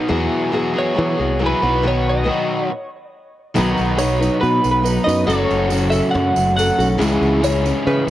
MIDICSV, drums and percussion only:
0, 0, Header, 1, 2, 480
1, 0, Start_track
1, 0, Tempo, 431344
1, 119, Time_signature, 4, 2, 24, 8
1, 9014, End_track
2, 0, Start_track
2, 0, Title_t, "Drums"
2, 3959, Note_on_c, 9, 54, 72
2, 4070, Note_off_c, 9, 54, 0
2, 4201, Note_on_c, 9, 54, 34
2, 4312, Note_off_c, 9, 54, 0
2, 4435, Note_on_c, 9, 54, 100
2, 4546, Note_off_c, 9, 54, 0
2, 4702, Note_on_c, 9, 54, 76
2, 4813, Note_off_c, 9, 54, 0
2, 4936, Note_on_c, 9, 54, 26
2, 5047, Note_off_c, 9, 54, 0
2, 5166, Note_on_c, 9, 54, 72
2, 5277, Note_off_c, 9, 54, 0
2, 5403, Note_on_c, 9, 54, 96
2, 5514, Note_off_c, 9, 54, 0
2, 5660, Note_on_c, 9, 54, 72
2, 5772, Note_off_c, 9, 54, 0
2, 5894, Note_on_c, 9, 54, 73
2, 6005, Note_off_c, 9, 54, 0
2, 6126, Note_on_c, 9, 54, 29
2, 6237, Note_off_c, 9, 54, 0
2, 6348, Note_on_c, 9, 54, 80
2, 6459, Note_off_c, 9, 54, 0
2, 6587, Note_on_c, 9, 54, 69
2, 6698, Note_off_c, 9, 54, 0
2, 6836, Note_on_c, 9, 54, 24
2, 6947, Note_off_c, 9, 54, 0
2, 7079, Note_on_c, 9, 54, 70
2, 7190, Note_off_c, 9, 54, 0
2, 7331, Note_on_c, 9, 54, 82
2, 7443, Note_off_c, 9, 54, 0
2, 7568, Note_on_c, 9, 54, 61
2, 7679, Note_off_c, 9, 54, 0
2, 7805, Note_on_c, 9, 54, 71
2, 7916, Note_off_c, 9, 54, 0
2, 8042, Note_on_c, 9, 54, 27
2, 8153, Note_off_c, 9, 54, 0
2, 8275, Note_on_c, 9, 54, 92
2, 8386, Note_off_c, 9, 54, 0
2, 8520, Note_on_c, 9, 54, 65
2, 8631, Note_off_c, 9, 54, 0
2, 8760, Note_on_c, 9, 54, 23
2, 8871, Note_off_c, 9, 54, 0
2, 9014, End_track
0, 0, End_of_file